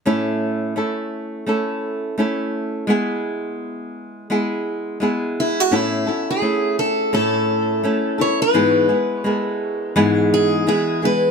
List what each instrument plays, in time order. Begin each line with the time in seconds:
0.06 nylon-string guitar A2 A3 C#4 E4 A4
0.76 nylon-string guitar A3 C#4 E4 A4
1.47 nylon-string guitar A3 C#4 E4 A4
2.18 nylon-string guitar A3 C#4 E4 A4
2.87 nylon-string guitar G#3 B3 E4 G#4
4.30 nylon-string guitar G#3 B3 E4 G#4
5.00 nylon-string guitar G#3 B3 E4 G#4
5.40 steel-string acoustic guitar E4
5.60 steel-string acoustic guitar F#4
5.71 nylon-string guitar A2 A3 C#4 E4 A4, steel-string acoustic guitar E4
6.07 nylon-string guitar C#4 E4 A4
6.31 steel-string acoustic guitar G#4
6.42 nylon-string guitar A3 C#4 E4
6.79 steel-string acoustic guitar A4
7.13 nylon-string guitar A2 A3 C#4 E4 A4, steel-string acoustic guitar A4
7.83 nylon-string guitar A3 C#4 E4 A4
8.18 nylon-string guitar C#4 E4 A4, steel-string acoustic guitar C#5
8.42 steel-string acoustic guitar B4
8.54 nylon-string guitar G#2 E3 G#3 B3 E4 G#4
8.89 nylon-string guitar G#3 B3 E4 G#4
9.24 nylon-string guitar G#3 B3 E4 G#4
9.34 steel-string acoustic guitar A4
9.96 nylon-string guitar G#2 E3 G#3 B3 E4 G#4
10.34 steel-string acoustic guitar G#4
10.67 nylon-string guitar G#3 B3 E4 G#4, steel-string acoustic guitar G#4
11.02 nylon-string guitar G#3 B3 E4 G#4, steel-string acoustic guitar B4